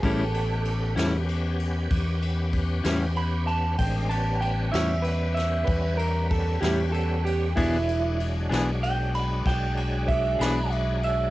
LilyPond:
<<
  \new Staff \with { instrumentName = "Clean electric guitar" } { \time 12/8 \key a \major \tempo 4. = 64 a'2 r2. b''8 a''8 | g''8 a''8 g''8 e''8 b'8 e''8 b'8 ais'8 a'8 g'8 a'8 g'8 | e'4 r4 g''8 b''8 g''4 e''8 b''8 e''8 e''8 | }
  \new Staff \with { instrumentName = "Clean electric guitar" } { \time 12/8 \key a \major <a, g cis' e'>8 r4 <a, g cis' e'>8 r2 r8 <a, g cis' e'>8 r4 | r4. <a, g cis' e'>8 r2 r8 <a, g cis' e'>8 r4 | <e b d' gis'>8 r4 <e b d' gis'>8 r2 r8 <e b d' gis'>8 r4 | }
  \new Staff \with { instrumentName = "Tonewheel organ" } { \time 12/8 \key a \major <b cis' g'>1. | <gis c' d'>8 <g b cis'>1~ <g b cis'>4. | <fis gis d'>1. | }
  \new Staff \with { instrumentName = "Fingered electric bass" } { \clef bass \time 12/8 \key a \major a,,4. e,4. e,4. e,4. | a,,4. e,4. e,4. e,4. | e,,4. b,,4. b,,4. b,,4. | }
  \new DrumStaff \with { instrumentName = "Drums" } \drummode { \time 12/8 <bd cymr>8 cymr8 cymr8 <cymr sn>8 cymr8 cymr8 <bd cymr>8 cymr8 <bd cymr>8 <cymr sn>8 cymr8 cymr8 | <bd cymr>8 cymr8 cymr8 <cymr sn>8 cymr8 <cymr sn>8 <bd cymr>8 cymr8 <bd cymr>8 <cymr sn>8 cymr8 cymr8 | <bd cymr>8 cymr8 cymr8 <cymr sn>8 cymr8 cymr8 <bd cymr sn>8 cymr8 <bd cymr>8 <cymr sn>8 cymr8 cymr8 | }
>>